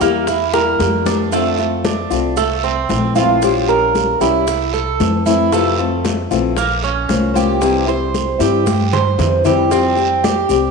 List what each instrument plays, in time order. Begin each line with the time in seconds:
0.01 upright bass E2, nylon-string guitar G3 A#3 E4 G4, cuban tres A#3, high bongo, high conga, short guiro, maracas
0.27 cuban tres E4, muted nylon-string guitar stroke, high bongo, high conga, long guiro, maracas
0.53 nylon-string guitar G3 A#3 E4 G4, cuban tres A#4, high bongo, high conga, maracas
0.79 upright bass F2, nylon-string guitar G3 A#3 E4 G4, high bongo, high conga, short guiro, maracas
1.06 cuban tres D4, low bongo, high conga, short guiro, maracas
1.32 nylon-string guitar D3 A3 C4 F4, cuban tres A3, high bongo, high conga, long guiro, maracas
1.58 nylon-string guitar A3 C4 F4, high bongo, high conga, maracas
1.84 cuban tres D4, high bongo, high conga, short guiro, maracas
2.11 upright bass C2, nylon-string guitar A3 C4 F4, high bongo, high conga, short guiro, maracas
2.37 cuban tres A3, muted nylon-string guitar stroke, high bongo, high conga, long guiro, maracas
2.63 cuban tres C4, high bongo, high conga, maracas
2.89 upright bass A#1, nylon-string guitar E3 A3 C4 E4, high bongo, low bongo, high conga, short guiro, maracas
3.15 nylon-string guitar E3 A3 C4 E4, cuban tres F4, high conga, short guiro, maracas
3.42 nylon-string guitar F3 G3 C#4 G4, high bongo, high conga, long guiro, maracas
3.68 nylon-string guitar G3 C#4 G4, cuban tres A#4, high bongo, high conga, maracas
3.94 high bongo, high conga, short guiro, maracas
4.21 upright bass C2, nylon-string guitar G3 C#4 G4, cuban tres E4, high bongo, high conga, short guiro, maracas
4.47 muted nylon-string guitar stroke, high bongo, high conga, long guiro, maracas
4.74 cuban tres A4, high bongo, high conga, maracas
4.99 upright bass F2, nylon-string guitar E3 A3 C4 E4, high bongo, low bongo, high conga, short guiro, maracas
5.26 nylon-string guitar E3 A3 C4 E4, cuban tres E4, high conga, short guiro, maracas
5.52 nylon-string guitar C3 E3 A3 C4 F4, cuban tres A3, high bongo, long guiro, maracas
5.78 nylon-string guitar A3 C4 F4, high bongo, high conga, maracas
6.05 high bongo, high conga, short guiro, maracas
6.31 upright bass A#1, nylon-string guitar E3 A3 C4 F4, high bongo, high conga, short guiro, maracas
6.57 cuban tres A#3, muted nylon-string guitar stroke, high bongo, high conga, long guiro, maracas
6.83 cuban tres C#4, high bongo, high conga, maracas
7.09 upright bass C2, nylon-string guitar A#3 C#4 F4 C5, high bongo, low bongo, high conga, short guiro, maracas
7.34 nylon-string guitar A#3 C#4 F4 C5, cuban tres G4, high conga, short guiro, maracas
7.61 nylon-string guitar C3 E3 G3 C4 E4, high bongo, long guiro, maracas
7.86 nylon-string guitar G3 C4 E4, cuban tres C5, high bongo, high conga, maracas
8.14 high bongo, high conga, short guiro, maracas
8.39 upright bass G2, nylon-string guitar E3 G3 C4 E4, cuban tres G4, high bongo, high conga, short guiro, maracas
8.66 muted nylon-string guitar stroke, high bongo, high conga, long guiro, maracas
8.93 cuban tres C5, high bongo, low conga, maracas
9.18 upright bass F2, nylon-string guitar E3 G3 C4 E4, high bongo, low bongo, low conga, short guiro, maracas
9.45 nylon-string guitar E3 G3 C4 E4, cuban tres G4, low conga, short guiro, maracas
9.70 nylon-string guitar F3 G3 C4 G4, cuban tres C4, high bongo, high conga, long guiro, maracas
9.97 nylon-string guitar G3 C4 G4, high bongo, high conga, maracas
10.24 cuban tres G4, high bongo, high conga, short guiro, maracas
10.49 upright bass C2, nylon-string guitar G3 C4 G4, high bongo, high conga, short guiro, maracas